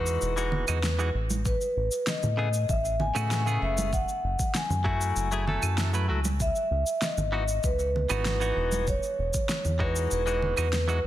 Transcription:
0.00 0.18 E2 medium
0.00 0.33 E3 medium
0.00 0.33 G#3 medium
0.00 0.34 D#4 medium
0.00 0.34 F#4 medium
0.00 1.11 B4 loud
0.06 cabasa medium
0.22 0.65 E1 medium
0.22 cabasa medium
0.36 0.64 E3 medium
0.36 0.64 G#3 medium
0.36 0.64 D#4 medium
0.36 0.65 F#4 medium
0.36 cabasa soft
0.52 low conga medium
0.68 1.11 E2 medium
0.68 0.78 E3 medium
0.68 0.78 G#3 medium
0.68 0.78 D#4 medium
0.68 0.78 F#4 medium
0.68 cabasa medium
0.68 claves medium
0.83 snare loud
0.83 cabasa medium
0.99 1.09 E3 medium
0.99 1.09 G#3 medium
0.99 1.09 D#4 medium
0.99 1.09 F#4 medium
0.99 cabasa soft
1.15 1.57 A1 medium
1.30 high conga medium
1.30 cabasa medium
1.45 2.04 B4 medium
1.45 kick loud
1.45 cabasa medium
1.61 cabasa soft
1.77 1.90 A1 medium
1.92 cabasa medium
2.07 2.71 D#5 medium
2.07 snare medium
2.07 cabasa medium
2.23 2.66 A2 medium
2.23 low conga medium
2.23 cabasa soft
2.37 2.48 C#3 medium
2.37 2.48 A3 medium
2.37 2.48 B3 medium
2.37 2.48 G#4 medium
2.54 cabasa medium
2.69 3.12 A1 medium
2.69 3.01 E5 loud
2.69 kick loud
2.69 cabasa soft
2.85 cabasa soft
3.00 3.58 G#5 loud
3.00 low conga medium
3.15 3.58 A2 medium
3.15 3.42 C#3 medium
3.15 3.43 A3 medium
3.15 3.43 B3 medium
3.15 3.43 F#4 loud
3.15 cabasa medium
3.15 claves medium
3.31 snare loud
3.31 cabasa medium
3.46 3.90 C#3 medium
3.46 3.91 A3 medium
3.46 3.91 B3 medium
3.46 3.91 G#4 loud
3.46 cabasa soft
3.62 4.05 F#1 medium
3.62 3.94 E5 medium
3.78 high conga loud
3.78 cabasa medium
3.93 4.57 F#5 medium
3.93 kick loud
3.93 cabasa medium
4.09 cabasa soft
4.24 4.37 F#1 medium
4.39 kick loud
4.39 cabasa medium
4.55 5.75 G#5 medium
4.55 snare medium
4.55 cabasa medium
4.70 5.13 F#2 medium
4.70 low conga medium
4.70 cabasa soft
4.84 5.28 F#3 medium
4.84 5.28 A3 medium
4.84 5.28 E4 medium
4.84 5.29 F#4 loud
4.84 kick medium
5.01 cabasa medium
5.16 5.59 F#1 medium
5.16 cabasa soft
5.31 5.44 F#3 medium
5.31 5.44 A3 medium
5.31 5.45 E4 medium
5.31 5.45 G#4 medium
5.31 cabasa soft
5.47 5.90 F#3 medium
5.47 5.90 A3 medium
5.47 5.90 E4 medium
5.47 5.91 A4 medium
5.47 low conga medium
5.63 6.11 F#2 medium
5.63 cabasa medium
5.63 claves medium
5.78 snare loud
5.78 cabasa medium
5.93 6.05 F#3 medium
5.93 6.05 A3 medium
5.93 6.06 E4 medium
5.93 6.06 B4 medium
5.93 cabasa soft
6.08 6.52 C#2 medium
6.08 6.19 F#3 medium
6.08 6.19 A3 medium
6.08 6.19 E4 medium
6.08 6.19 F#4 medium
6.25 high conga medium
6.25 cabasa medium
6.40 7.05 E5 loud
6.40 kick loud
6.40 cabasa medium
6.56 cabasa soft
6.71 6.84 C#2 medium
6.87 cabasa medium
7.02 7.66 D#5 medium
7.02 snare medium
7.02 cabasa medium
7.17 7.60 G#1 medium
7.17 low conga medium
7.17 cabasa soft
7.32 7.42 E3 medium
7.32 7.43 B3 medium
7.32 7.43 D#4 medium
7.32 7.43 F#4 medium
7.48 cabasa medium
7.64 8.07 C#2 medium
7.64 8.22 B4 medium
7.64 kick loud
7.64 cabasa medium
7.79 cabasa soft
7.96 low conga medium
8.10 8.53 G#1 medium
8.10 8.37 E3 medium
8.10 8.37 B3 medium
8.10 8.38 D#4 medium
8.10 8.38 F#4 loud
8.10 cabasa medium
8.10 claves medium
8.25 8.84 B4 medium
8.25 snare medium
8.25 cabasa medium
8.40 8.85 E3 loud
8.40 8.85 B3 medium
8.40 8.86 D#4 medium
8.40 8.86 F#4 loud
8.40 cabasa soft
8.56 8.99 E1 medium
8.72 high conga medium
8.72 cabasa medium
8.87 9.83 C#5 medium
8.87 kick loud
8.87 cabasa medium
9.03 cabasa soft
9.19 9.32 E1 medium
9.34 kick medium
9.34 cabasa medium
9.49 snare medium
9.49 cabasa medium
9.65 10.08 E2 medium
9.65 low conga medium
9.65 cabasa soft
9.79 10.23 E3 medium
9.79 10.23 G#3 medium
9.79 10.23 D#4 medium
9.79 10.24 F#4 medium
9.79 10.11 B4 medium
9.79 kick medium
9.96 cabasa medium
10.11 10.54 E1 medium
10.11 11.01 B4 medium
10.11 cabasa medium
10.26 10.54 E3 medium
10.26 10.54 G#3 medium
10.26 10.54 D#4 medium
10.26 10.54 F#4 medium
10.26 cabasa soft
10.42 low conga medium
10.57 11.00 E2 medium
10.57 10.67 E3 medium
10.57 10.67 G#3 medium
10.57 10.67 D#4 medium
10.57 10.68 F#4 medium
10.57 cabasa medium
10.57 claves medium
10.73 snare medium
10.73 cabasa soft
10.88 10.98 E3 medium
10.88 10.98 G#3 medium
10.88 10.98 D#4 medium
10.88 10.99 F#4 medium
10.88 cabasa soft

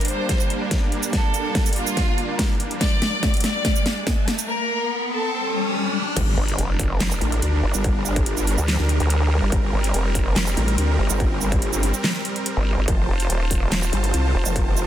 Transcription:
0.00 4.45 G3 medium
0.00 4.45 A#3 medium
0.00 4.45 D4 medium
0.00 closed hi-hat medium
0.00 riser medium
0.05 0.63 C5 medium
0.05 closed hi-hat medium
0.05 open hi-hat medium
0.29 kick medium
0.29 snare soft
0.29 closed hi-hat medium
0.40 shaker soft
0.50 closed hi-hat medium
0.71 kick medium
0.71 snare medium
0.71 closed hi-hat medium
0.92 closed hi-hat soft
1.03 closed hi-hat soft
1.03 shaker medium
1.13 1.68 A4 medium
1.13 kick loud
1.13 snare medium
1.13 closed hi-hat medium
1.34 closed hi-hat medium
1.34 shaker soft
1.55 kick loud
1.55 snare medium
1.55 closed hi-hat medium
1.66 closed hi-hat medium
1.66 shaker medium
1.69 closed hi-hat medium
1.73 2.31 F4 loud
1.73 closed hi-hat medium
1.73 open hi-hat medium
1.87 shaker medium
1.97 kick loud
1.97 snare medium
1.97 closed hi-hat medium
2.18 closed hi-hat medium
2.39 2.69 A#4 medium
2.39 kick medium
2.39 snare medium
2.39 closed hi-hat medium
2.60 closed hi-hat medium
2.71 closed hi-hat soft
2.81 3.36 D5 loud
2.81 kick loud
2.81 snare medium
2.81 closed hi-hat medium
3.02 snare medium
3.02 closed hi-hat medium
3.23 kick loud
3.23 snare medium
3.23 closed hi-hat medium
3.34 closed hi-hat soft
3.37 closed hi-hat medium
3.40 3.99 D5 loud
3.40 snare medium
3.40 closed hi-hat medium
3.40 open hi-hat medium
3.65 kick loud
3.65 snare medium
3.65 closed hi-hat medium
3.76 shaker medium
3.86 snare medium
3.86 closed hi-hat soft
4.07 kick medium
4.07 snare medium
4.07 closed hi-hat medium
4.28 snare medium
4.28 closed hi-hat soft
4.39 closed hi-hat soft
4.39 shaker medium
4.49 5.04 A#4 loud
5.12 5.67 A4 loud
5.33 swell medium
5.75 6.05 G4 medium
6.16 6.36 G1 medium
6.16 12.84 G3 medium
6.16 9.49 D4 medium
6.16 12.84 A#4 medium
6.16 kick loud
6.16 closed hi-hat medium
6.16 crash loud
6.16 impact medium
6.38 6.57 G1 loud
6.48 closed hi-hat medium
6.58 6.99 F1 loud
6.58 closed hi-hat medium
6.79 kick medium
6.79 open hi-hat medium
7.00 7.20 F1 medium
7.00 snare loud
7.00 clap medium
7.00 closed hi-hat medium
7.11 shaker soft
7.21 7.41 A1 loud
7.21 closed hi-hat medium
7.32 closed hi-hat medium
7.42 7.62 D2 loud
7.42 closed hi-hat medium
7.63 7.73 G1 loud
7.74 8.57 G1 loud
7.74 shaker medium
7.84 kick loud
7.84 closed hi-hat medium
8.05 shaker medium
8.16 kick loud
8.16 closed hi-hat medium
8.26 closed hi-hat medium
8.37 shaker medium
8.47 open hi-hat medium
8.58 8.77 D2 loud
8.58 shaker medium
8.68 snare loud
8.68 clap loud
8.68 closed hi-hat medium
8.79 8.99 D2 medium
8.89 closed hi-hat medium
9.00 9.40 D2 loud
9.00 closed hi-hat medium
9.10 closed hi-hat medium
9.42 9.51 G1 loud
9.52 9.72 G1 medium
9.52 12.85 C4 medium
9.52 kick loud
9.52 closed hi-hat medium
9.73 9.93 G1 medium
9.84 closed hi-hat medium
9.94 10.35 F1 medium
9.94 closed hi-hat medium
10.15 kick medium
10.15 open hi-hat medium
10.36 10.55 F1 medium
10.36 snare loud
10.36 clap medium
10.36 closed hi-hat medium
10.47 shaker medium
10.57 10.77 A1 loud
10.57 closed hi-hat soft
10.68 closed hi-hat medium
10.78 10.97 D2 loud
10.78 closed hi-hat medium
10.99 11.08 G1 loud
11.10 11.92 G1 loud
11.10 shaker medium
11.20 kick loud
11.20 closed hi-hat medium
11.41 shaker medium
11.52 kick loud
11.52 closed hi-hat medium
11.62 closed hi-hat medium
11.73 shaker medium
11.83 open hi-hat medium
11.94 shaker medium
12.04 snare loud
12.04 clap medium
12.04 closed hi-hat medium
12.25 closed hi-hat medium
12.36 closed hi-hat soft
12.46 closed hi-hat medium
12.57 12.76 G1 medium
12.78 12.86 G1 loud
12.88 13.07 F1 loud
12.88 14.87 F4 medium
12.88 14.87 C5 medium
12.88 14.87 A5 medium
12.88 kick loud
12.88 closed hi-hat medium
13.09 13.28 F1 medium
13.20 closed hi-hat medium
13.30 13.70 D#1 loud
13.30 closed hi-hat medium
13.51 kick medium
13.51 open hi-hat medium
13.72 13.91 D#1 loud
13.72 snare loud
13.72 clap medium
13.72 closed hi-hat medium
13.83 shaker medium
13.93 14.12 G1 loud
13.93 closed hi-hat medium
14.04 closed hi-hat soft
14.14 14.33 C2 loud
14.14 closed hi-hat medium
14.35 14.44 F1 loud
14.46 14.87 F1 loud
14.46 shaker medium
14.56 kick loud
14.56 closed hi-hat medium
14.77 shaker medium

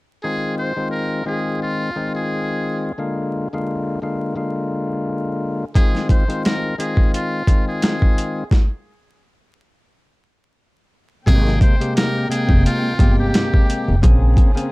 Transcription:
0.23 0.73 D#3 medium
0.23 0.73 G#3 medium
0.23 0.73 C4 medium
0.23 0.73 F4 medium
0.23 0.54 G#4 medium
0.58 0.89 C5 medium
0.76 1.23 D#3 medium
0.76 1.23 G#3 medium
0.76 1.23 C4 medium
0.76 1.24 F4 loud
0.91 1.23 A#4 medium
1.25 1.90 D#3 medium
1.25 1.91 G#3 medium
1.25 1.91 C4 medium
1.25 1.91 F4 loud
1.25 1.58 G#4 medium
1.62 2.12 F4 medium
1.96 2.92 D#3 medium
1.96 2.92 G#3 medium
1.96 2.93 C4 medium
1.96 2.93 F4 loud
2.15 2.95 G#4 medium
2.98 3.48 D3 medium
2.98 3.48 G#3 medium
2.98 3.48 A#3 medium
2.98 3.49 F4 loud
3.53 3.99 D3 medium
3.53 3.99 G#3 medium
3.53 4.00 A#3 medium
3.53 4.00 F4 loud
4.02 4.35 D3 medium
4.02 4.35 G#3 medium
4.02 4.35 A#3 medium
4.02 4.35 F4 loud
4.36 5.65 D3 medium
4.36 5.65 G#3 medium
4.36 5.65 A#3 medium
4.36 5.65 F4 loud
5.75 6.24 D#3 medium
5.75 6.24 G#3 medium
5.75 6.25 C4 medium
5.75 6.25 F4 loud
5.75 6.06 G#4 medium
5.75 kick loud
5.75 closed hi-hat medium
5.95 snare soft
6.09 6.41 C5 medium
6.09 kick loud
6.09 closed hi-hat medium
6.28 6.75 D#3 medium
6.28 6.75 G#3 medium
6.28 6.75 C4 medium
6.28 6.75 F4 loud
6.28 closed hi-hat soft
6.45 6.76 A#4 medium
6.45 snare loud
6.45 closed hi-hat medium
6.78 7.43 D#3 medium
6.78 7.43 G#3 medium
6.78 7.43 C4 medium
6.78 7.43 F4 loud
6.78 7.10 G#4 medium
6.78 closed hi-hat medium
6.97 kick medium
7.14 7.64 F4 medium
7.14 closed hi-hat medium
7.47 8.43 D#3 medium
7.47 8.44 G#3 medium
7.47 8.44 C4 medium
7.47 8.44 F4 medium
7.47 kick medium
7.47 closed hi-hat medium
7.68 8.48 G#4 medium
7.82 snare loud
7.82 closed hi-hat medium
8.02 kick medium
8.18 closed hi-hat medium
8.51 kick loud
8.51 snare medium
11.26 11.57 G#1 loud
11.26 13.99 C3 medium
11.26 11.76 C3 loud
11.26 11.76 G#3 medium
11.26 13.99 A#3 medium
11.26 11.76 A#3 medium
11.26 11.58 G#4 loud
11.26 13.99 G5 medium
11.26 11.76 G5 medium
11.26 kick loud
11.26 closed hi-hat loud
11.47 snare soft
11.61 11.93 C5 medium
11.61 kick loud
11.61 closed hi-hat medium
11.80 12.27 C3 medium
11.80 12.27 G#3 medium
11.80 12.27 A#3 medium
11.80 12.27 G4 loud
11.80 closed hi-hat soft
11.96 12.27 A#4 loud
11.96 snare loud
11.96 closed hi-hat medium
12.29 12.94 C3 medium
12.29 12.94 G#3 medium
12.29 12.94 A#3 medium
12.29 12.62 G#4 medium
12.29 12.95 G5 loud
12.29 closed hi-hat medium
12.49 12.63 F1 medium
12.49 kick medium
12.66 13.16 F4 medium
12.66 closed hi-hat medium
12.99 13.30 G1 medium
12.99 13.95 C3 medium
12.99 13.96 G#3 medium
12.99 13.96 A#3 medium
12.99 13.96 G4 loud
12.99 kick medium
12.99 closed hi-hat medium
13.18 13.99 G4 medium
13.34 snare loud
13.34 closed hi-hat loud
13.54 kick medium
13.70 closed hi-hat medium
13.88 14.01 F1 medium
14.02 14.33 A#1 loud
14.02 14.51 C#3 loud
14.02 14.72 C#3 medium
14.02 14.52 A#3 medium
14.02 14.72 C4 medium
14.02 14.52 C4 medium
14.02 14.72 G#4 medium
14.02 14.52 G#4 loud
14.02 kick loud
14.02 closed hi-hat loud
14.37 kick loud
14.37 closed hi-hat medium
14.55 14.72 C#3 medium
14.55 14.72 A#3 medium
14.55 14.72 C4 medium
14.55 14.72 G#4 loud
14.55 closed hi-hat medium

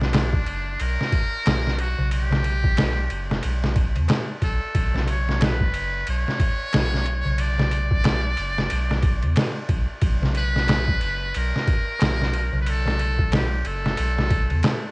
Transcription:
0.00 0.44 B1 loud
0.00 0.83 D4 loud
0.00 snare soft
0.13 snare loud
0.13 ride medium
0.13 darbuka tek medium
0.33 kick loud
0.46 0.76 F#1 medium
0.46 ride medium
0.80 0.97 B1 medium
0.80 1.81 A#4 loud
0.80 ride medium
1.01 snare soft
1.12 kick medium
1.12 ride medium
1.46 1.95 B1 medium
1.46 snare loud
1.46 ride medium
1.46 darbuka tek medium
1.67 snare soft
1.78 2.12 F#4 loud
1.78 ride medium
1.98 3.08 B1 loud
1.98 darbuka dum medium
2.11 3.40 G4 loud
2.11 ride medium
2.31 snare medium
2.31 darbuka dum medium
2.44 ride medium
2.64 kick medium
2.77 snare loud
2.77 ride medium
2.77 darbuka tek medium
3.10 3.40 F#1 medium
3.10 ride medium
3.31 snare medium
3.43 3.99 B1 medium
3.43 ride medium
3.64 snare medium
3.76 kick medium
3.76 ride medium
3.96 4.08 E2 loud
3.96 ride soft
3.96 darbuka dum medium
4.08 snare loud
4.08 ride medium
4.08 darbuka tek medium
4.42 4.60 B1 medium
4.42 5.05 A4 medium
4.42 kick medium
4.42 ride medium
4.75 5.72 B1 loud
4.75 kick loud
4.75 ride medium
4.94 snare soft
4.94 darbuka dum medium
5.08 5.46 C#5 medium
5.08 ride medium
5.29 snare soft
5.41 6.09 B4 medium
5.41 snare loud
5.41 ride medium
5.41 darbuka tek medium
5.61 kick medium
5.74 6.04 F#1 medium
5.74 ride medium
6.07 6.25 B1 medium
6.07 7.42 C#5 loud
6.07 ride medium
6.28 snare soft
6.40 kick loud
6.40 ride medium
6.73 7.22 B1 medium
6.73 snare loud
6.73 ride medium
6.73 darbuka tek medium
6.94 snare soft
7.06 ride medium
7.25 8.35 B1 loud
7.25 darbuka dum medium
7.38 9.71 D5 loud
7.38 ride medium
7.58 snare medium
7.58 darbuka dum medium
7.71 ride medium
7.91 kick medium
8.04 snare loud
8.04 ride medium
8.04 darbuka tek medium
8.37 8.68 F#1 medium
8.37 ride medium
8.58 snare medium
8.70 9.26 B1 medium
8.70 ride medium
8.91 snare soft
9.03 kick loud
9.03 ride medium
9.23 9.35 E2 loud
9.23 ride soft
9.23 darbuka dum medium
9.36 snare loud
9.36 ride medium
9.36 darbuka tek medium
9.69 9.87 B1 medium
9.69 kick loud
9.69 ride medium
10.02 10.99 B1 loud
10.02 kick loud
10.02 ride medium
10.22 snare soft
10.22 darbuka dum medium
10.35 11.39 B4 loud
10.35 ride medium
10.56 snare soft
10.68 snare loud
10.68 ride medium
10.68 darbuka tek medium
10.88 kick medium
11.01 11.32 F#1 medium
11.01 ride medium
11.34 11.52 B1 medium
11.34 12.61 A#4 loud
11.34 ride medium
11.56 snare soft
11.67 kick loud
11.67 ride medium
11.99 12.50 B1 medium
11.99 snare loud
11.99 ride medium
11.99 darbuka tek medium
12.21 snare soft
12.33 ride medium
12.53 13.63 B1 loud
12.53 darbuka dum medium
12.61 12.71 B4 medium
12.66 13.34 A4 loud
12.66 ride medium
12.85 snare medium
12.85 darbuka dum medium
12.99 ride medium
13.19 kick medium
13.32 13.68 G4 medium
13.32 snare loud
13.32 ride medium
13.32 darbuka tek medium
13.65 13.95 F#1 medium
13.65 14.91 A4 medium
13.65 ride medium
13.86 snare medium
13.97 14.53 B1 medium
13.97 ride medium
14.19 snare medium
14.31 kick loud
14.31 ride medium
14.50 14.62 E2 loud
14.50 ride soft
14.50 darbuka dum soft
14.63 snare loud
14.63 ride medium
14.63 darbuka tek medium

